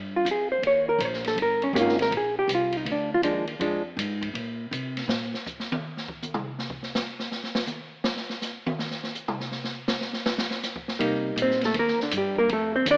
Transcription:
Already playing: G2
0.16 F4
0.25 F2, hi-hat pedal, ride
0.31 G#4
0.52 C5
0.62 D#2, ride
0.67 C#5
0.89 A#4
0.98 A#1, hi-hat pedal, ride
1.05 C5
1.13 snare
1.24 A4, snare, ride
1.36 G1, ride
1.42 A#4
1.62 C#4, ride
1.73 G#1 D#3 A#3 C#4 G4, hi-hat pedal, ride
1.80 F4
1.88 snare
1.99 A#4, snare, ride
2.11 A#1, ride
2.17 G#4
2.39 G4
2.47 C2, hi-hat pedal, ride
2.55 F4
2.72 ride
2.77 D#4
2.85 D2, ride
2.92 D4
3.14 F4
3.22 D#2 F3 G#3 D4, hi-hat pedal, ride
3.47 ride
3.59 F2 F3 G#3 D4, ride
3.97 G#2, hi-hat pedal, ride
4.22 kick, ride
4.34 A#2, ride
4.71 C3, hi-hat pedal, ride
4.97 snare, ride
5.08 A#2, snare
5.34 snare
5.46 kick, hi-hat pedal
5.60 snare
5.72 high tom
5.97 snare
6.08 kick
6.22 hi-hat pedal, high tom
6.34 mid tom
6.59 snare
6.70 kick
6.83 snare
6.95 snare, hi-hat pedal
7.19 snare
7.32 snare
7.43 snare
7.55 snare
7.67 hi-hat pedal, high tom
8.04 snare
8.17 snare
8.30 snare
8.42 snare, hi-hat pedal
8.66 high tom
8.79 snare
8.91 snare
9.03 snare
9.15 hi-hat pedal
9.28 mid tom
9.40 snare
9.52 snare
9.64 snare
9.88 snare, hi-hat pedal
10.01 snare
10.13 snare
10.26 snare
10.38 snare
10.51 snare
10.63 snare, hi-hat pedal
10.76 kick
10.88 snare
10.99 C3 G3 A#3 D#4, ride
11.36 A#2, hi-hat pedal, ride
11.42 C4 C5
11.50 snare
11.61 snare, ride
11.65 A3 A4
11.74 D#2, ride
11.79 A#3 A#4
11.87 snare
11.98 muted upright bass stroke, snare
12.03 D3 D4
12.11 G2, hi-hat pedal, ride
12.17 G3 G4
12.36 A#3 A#4, kick
12.49 F2, ride
12.53 A3 A4
12.76 C4 C5
12.86 D#2, hi-hat pedal, ride
12.90 D4 D5

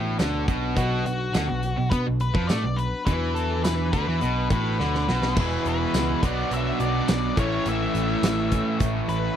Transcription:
Already playing: A1 A2 B3 D4 F#4
0.19 D2 B2 D3 F#3 B3 D4 F#4, snare, closed hi-hat, tambourine
0.48 B1 B2, kick, closed hi-hat
0.76 B1 B2 F#3 B3 D4 F#4, kick, closed hi-hat
1.06 B1 B2 F#4, closed hi-hat
1.34 D2 B2 D3 F#3 B3 D4 F#4, snare, closed hi-hat, tambourine
1.49 B1 B2
1.63 B3 D4 F#4, closed hi-hat
1.77 B1 B2
1.90 B2 F#3 B3 D4 F#4 B4, kick, closed hi-hat
2.07 B1 B2
2.20 B3 D4 F#4 B4, closed hi-hat
2.34 F2 F3, kick
2.47 A2 B2 F#3 A3 B3 D4 F#4 D5, snare, closed hi-hat, tambourine
2.64 B1 B2
2.76 B4, closed hi-hat
3.05 E2 B2 E3 F#3 B3 D4 F#4 B4, kick, closed hi-hat
3.35 A4, closed hi-hat
3.64 B2 F#3 B3 D4 F#4 B4, snare, closed hi-hat, tambourine
3.93 D2 D3 B3 D4 F#4 B4, kick, closed hi-hat
4.08 E2 E3
4.21 B1 B2 F#3 B3 D4 F#4, closed hi-hat
4.50 A1 A2 B3 D4 F#4 B4, kick, closed hi-hat
4.78 D2 B2 D3 F#3 B3 D4 F#4, snare
4.95 snare
5.08 B1 B2, snare
5.22 snare
5.35 E1 E2 B2 E3 G#3 B3 E4 G#4, kick, crash
5.40 E3 B4
5.65 E1 B4, closed hi-hat
5.94 C#2, snare, closed hi-hat, tambourine
6.22 B1 B2 F#3 B3 D4 F#4 D5, kick, closed hi-hat
6.51 B1 F#3 B3 D4 F#4 E5, closed hi-hat
6.80 B1 B3 D4 F#4 D5, closed hi-hat
7.08 B1 B2 F#3 B3 D4 F#4 D5, snare, closed hi-hat, tambourine
7.37 A1 A2 E3 A3 C#4 E4 C#5, kick, closed hi-hat
7.66 A1 A2 E3 A3 C#4 E4 E5, closed hi-hat
7.95 A1, closed hi-hat
8.23 A1, snare, closed hi-hat, tambourine
8.52 A3 C#4, kick, closed hi-hat
8.80 A1 E3 A3 C#4 E4, kick, closed hi-hat
9.09 A1 A3 C#4 B4, closed hi-hat

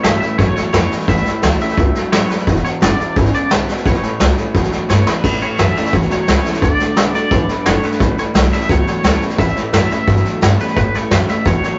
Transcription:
Already playing: A2
0.04 G2 A2 E3 F#3 A3 C#4 E4 E5, snare, hi-hat pedal
0.20 A2 E3 C#4 E4 E5, muted upright bass stroke, snare
0.38 E2 F#2 A2 F#3 C#5, kick, snare
0.42 E5
0.47 C#5
0.55 A2 F#3 C#5, muted upright bass stroke, snare
0.73 F2 A2 E3 A3 C#4 E4 C#5, snare, hi-hat pedal
0.90 A2 E3 C#4 E4, muted upright bass stroke, snare
0.99 snare
1.08 E2 A2 E3 E5, kick, snare
1.17 snare
1.25 A2 E3, muted upright bass stroke, snare
1.42 D2 A2 E3 F#3 A3 C#4 E4, snare, hi-hat pedal
1.60 A2 E3 C#4 E4 E5, muted upright bass stroke, snare
1.69 snare
1.77 C#2 G2 A2 F#3, kick, snare
1.95 A2 F#3, snare
2.12 A1 F#2 A2 E3 C#5, snare, hi-hat pedal
2.29 A2 E3 B4, muted upright bass stroke, snare
2.39 snare
2.47 E1 E2 B2, kick, snare
2.56 snare
2.64 E2 B2 C#5, muted upright bass stroke, snare
2.81 F#1 E2 C#3 D3 G#3 B3 E4 D5, snare, hi-hat pedal
2.98 E2 B2 B3 E4 D5, muted upright bass stroke, snare
3.16 G#1 E2 B2 C#3 C#5, kick, snare
3.25 snare
3.33 E2 C#3 D5, muted upright bass stroke, snare
3.50 B1 E2 B2 D3 G#3 B3 E4 B4, snare, hi-hat pedal
3.68 E2 B2 B3 E4, muted upright bass stroke, snare
3.77 snare
3.85 A1 A2 E3 C#5, kick, snare
3.94 snare
4.02 A2 E3, muted upright bass stroke, snare
4.19 C#2 A2 E3 F#3 A3 C#4 E4, snare, hi-hat pedal
4.37 A2 E3 C#4 E4, snare
4.54 E2 A2 F#3, kick, snare
4.63 snare
4.71 A2 F#3, muted upright bass stroke, snare
4.89 G2 A2 E3 A3 C#4 E4 C#5, snare, hi-hat pedal
5.06 A2 E3 C#4 E4 B4, muted upright bass stroke, snare
5.24 A2 E3, kick, snare, crash
5.33 snare
5.41 A2 E3 C#5, muted upright bass stroke, snare
5.58 F#2 A2 E3 F#3 A3 C#4 E4 E5, snare, hi-hat pedal
5.75 A2 E3 C#4 E4 E5, muted upright bass stroke, snare
5.85 snare
5.93 E2 A2 F#3 C#5, kick, snare
6.02 snare
6.10 A2 F#3 C#5, muted upright bass stroke, snare
6.27 C#2 A2 E3 A3 C#4 E4 C#5, snare, hi-hat pedal
6.45 A2 E3 C#4 E4, muted upright bass stroke, snare
6.54 snare
6.61 D2 D3 A3 D5, kick, snare
6.79 D3 A3, muted upright bass stroke, snare
6.96 B1 D3 A3 B3 D4 F#4, snare, hi-hat pedal
7.13 D3 A3 D4 F#4 D5, muted upright bass stroke, snare
7.30 A1 F#2 D3 B3, kick, snare
7.48 D3 B3, muted upright bass stroke, snare
7.65 F#1 G2 D3 A3 C#5, snare, hi-hat pedal
7.83 D3 A3 B4, muted upright bass stroke, snare
7.92 snare
8.00 A1 A2 E3, kick, snare
8.17 A2 E3 C#5, muted upright bass stroke, snare
8.34 B1 A2 E3 F#3 A3 C#4 E4 E5, snare, hi-hat pedal
8.51 A2 E3 C#4 E4 E5, muted upright bass stroke, snare
8.61 snare
8.69 C#2 E2 A2 F#3 C#5, kick, snare
8.86 A2 F#3 C#5, snare
9.03 D2 A2 E3 A3 C#4 E4 C#5, snare, hi-hat pedal
9.21 A2 E3 C#4 E4, muted upright bass stroke, snare
9.30 snare
9.38 E2 A2 E3 E5, kick, snare
9.47 snare
9.55 A2 E3, muted upright bass stroke, snare
9.72 F#2 A2 E3 F#3 A3 C#4 E4 E5, snare, hi-hat pedal
9.90 A2 E3 C#4 E4 E5, muted upright bass stroke, snare
10.07 E2 G2 A2 F#3, kick, snare
10.17 snare
10.24 A2 F#3, muted upright bass stroke, snare
10.41 G2 A2 E3 A3 C#4 E4 C#5, snare, hi-hat pedal
10.58 A2 E3 C#4 E4 B4, muted upright bass stroke, snare
10.68 snare
10.76 A2 E3 B4, kick, snare
10.94 A2 E3 C#5, muted upright bass stroke, snare
11.11 F#2 A2 E3 F#3 A3 C#4 E4 E5, snare, hi-hat pedal
11.27 A2 E3 C#4 E4 E5, muted upright bass stroke, snare
11.45 E2 A2 F#3 C#5, kick, snare
11.63 A2 F#3 C#5, muted upright bass stroke, snare

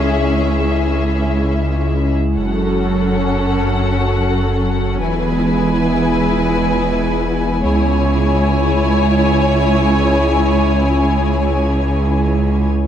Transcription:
Already playing: C#2 G#3 C#4 E4 G#4 E5
2.37 F#1 F#2 F#3 C#4 F#4 A4 F#5
5.01 E1 E2 G#3 B3 E4 G#4 B4 G#5
7.63 C#2 G#3 C#4 E4 G#4 C#5 G#5

